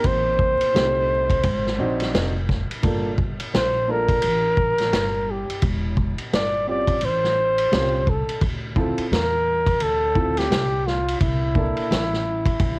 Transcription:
Already playing: A#3 C4 D#4 G4
0.04 A1 C5, kick, ride
0.39 kick
0.61 muted upright bass stroke, ride
0.74 C2 A3 C4 D#4 G4, snare, hi-hat pedal, ride
1.30 kick, ride
1.43 G#1, kick, ride
1.67 snare
1.78 A#1 C4 D4 D#4 F#4
2.00 snare, ride
2.14 F1, snare, hi-hat pedal, ride
2.49 kick, snare
2.71 muted upright bass stroke, ride
2.83 G1 A#3 D4 F4 A4, kick, ride
3.18 kick
3.40 muted upright bass stroke, ride
3.54 A#1 C5, snare, hi-hat pedal, ride
3.88 A#3 D4 F4 A4 A#4
4.08 kick, ride
4.22 A1, ride
4.57 kick
4.78 snare, ride
4.93 G1, snare, hi-hat pedal, ride
5.31 G4
5.50 muted upright bass stroke, ride
5.62 E1, kick, ride
5.97 kick
6.18 ride
6.33 G1 D5, snare, hi-hat pedal, ride
6.67 C4 C#4 F4 G4 D5
6.87 kick, ride
7.01 A1 C5, ride
7.24 snare
7.58 ride
7.71 C2 C4 C#4 F4 G4, snare, hi-hat pedal, ride
8.07 A4, kick
8.29 muted upright bass stroke, ride
8.41 D2, kick, ride
8.76 C4 E4 F4 A4, kick
8.98 muted upright bass stroke, ride
9.11 E2 A#4, snare, hi-hat pedal, ride
9.66 kick, ride
9.80 D2 A4, ride
10.15 C4 E4 F4 A4, kick
10.37 G4, snare, ride
10.51 C2, snare, hi-hat pedal, ride
10.86 F4, snare
11.08 ride
11.20 C2 E4, kick, ride
11.55 A#3 D4 E4 A4, kick
11.77 muted upright bass stroke, ride
11.91 A1, snare, hi-hat pedal, ride
12.13 snare
12.46 kick, ride
12.60 A#1, kick, ride

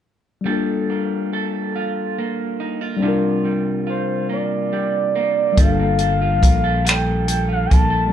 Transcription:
0.41 G3 A#3
0.46 G3 D4 F4 A4
0.53 A4
0.90 A#3
1.33 A4
1.76 F4
2.18 A#3
2.60 D#4
2.81 F4
2.97 G3 C4
3.02 C3 D4 E4 F4
3.08 F4 A#4
3.45 G3
3.87 F4 C5
4.29 A#3 D5
4.73 G3
5.15 A#3
5.52 G3 A#3
5.57 G1 G3 D4 F4 A4 F5, kick, closed hi-hat
5.64 A4
5.80 A#3
5.99 A4, closed hi-hat
6.21 F4
6.42 A#1 A#3, kick, closed hi-hat
6.64 A4
6.85 G3 A4 G5, closed hi-hat
6.89 finger snap
7.06 A#3
7.28 A4 G5, closed hi-hat
7.48 F4 F5
7.65 G#5
7.70 A#1 A#3 A5, kick, closed hi-hat
7.90 A4
8.07 G3

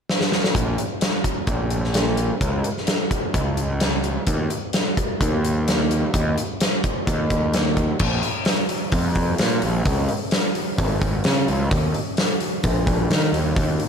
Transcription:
0.09 snare
0.21 snare
0.32 snare
0.44 snare
0.55 A#1, kick, closed hi-hat
0.78 closed hi-hat
1.01 snare, closed hi-hat
1.24 kick, closed hi-hat
1.47 A#1, kick, closed hi-hat
1.70 closed hi-hat
1.84 snare
1.94 snare, closed hi-hat
2.17 closed hi-hat
2.41 C#2, kick, closed hi-hat
2.64 closed hi-hat
2.77 snare
2.87 snare, closed hi-hat
3.11 kick, closed hi-hat
3.34 C#2, kick, closed hi-hat
3.57 closed hi-hat
3.80 snare, closed hi-hat
4.04 closed hi-hat
4.27 D#2, kick, closed hi-hat
4.50 closed hi-hat
4.73 snare, closed hi-hat
4.97 kick, closed hi-hat
5.21 D#2, kick, closed hi-hat
5.45 closed hi-hat
5.68 snare, closed hi-hat
5.91 closed hi-hat
6.14 D#2, kick, closed hi-hat
6.38 closed hi-hat
6.60 snare, closed hi-hat
6.84 kick, closed hi-hat
7.07 D#2, kick, closed hi-hat
7.30 kick, closed hi-hat
7.54 snare, closed hi-hat
7.77 kick, closed hi-hat
7.99 A#1, kick, crash
8.23 open hi-hat
8.45 snare, open hi-hat
8.69 open hi-hat
8.92 F2, kick, open hi-hat
9.15 kick, open hi-hat
9.38 A#2, snare, open hi-hat
9.62 A#1, open hi-hat
9.85 C#2, kick, open hi-hat
10.09 open hi-hat
10.31 snare, open hi-hat
10.55 open hi-hat
10.78 G#1, kick, open hi-hat
11.02 kick, open hi-hat
11.24 C#3, snare, open hi-hat
11.48 C#2, open hi-hat
11.71 D#2, kick, open hi-hat
11.94 open hi-hat
12.17 snare, open hi-hat
12.40 open hi-hat
12.63 A#1, kick, open hi-hat
12.87 kick, open hi-hat
13.10 D#3, snare, open hi-hat
13.32 D#2, open hi-hat
13.56 D#2, kick, open hi-hat
13.80 open hi-hat

